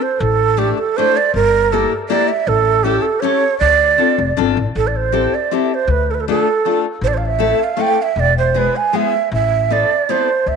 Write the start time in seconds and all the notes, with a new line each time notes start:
0.02 C5
0.20 A1 A4
0.57 A3 D4 E4 G4 A4
0.78 A4
0.97 A3 D4 E4 A4 C5
1.17 D5
1.34 G1 A#4
1.72 A#3 E4 G4 A4 A#4
2.09 A#3 E4 G4 A#4 D5
2.29 E5
2.47 A1 A4
2.83 C#4 E4 G4 A4
3.02 A4
3.20 C#4 E4 G4 A4 C#5
3.59 D2 D5
3.98 C4 D4 F4 A4
4.18 F1
4.37 G1 C4 D4 F4 A4
4.57 A1
4.75 A1 A4
4.87 D5
4.96 C5
5.12 C4 E4 G4 A4
5.34 D5
5.51 C4 E4 G4 A4 E5
5.74 C5
5.88 D2 B4
6.11 A4 B4
6.20 A4
6.28 A3 D4 F4 A4
6.65 A3 D4 F4 A4
7.01 A1 C5
7.08 D5
7.14 C5 F5
7.26 E5
7.39 A3 C4 E4 A4
7.64 F5
7.77 A3 C4 E4 A4
7.81 G5
8.02 E5
8.16 E1 D5
8.38 C5
8.54 G#3 B3 E4 G#4 B4
8.76 G#5
8.93 G#3 B3 E4 G#4 E5
9.32 A1 E5
9.70 B3 C4 E4 A4 D5
10.09 B3 C4 E4 A4 C5
10.46 D2 E5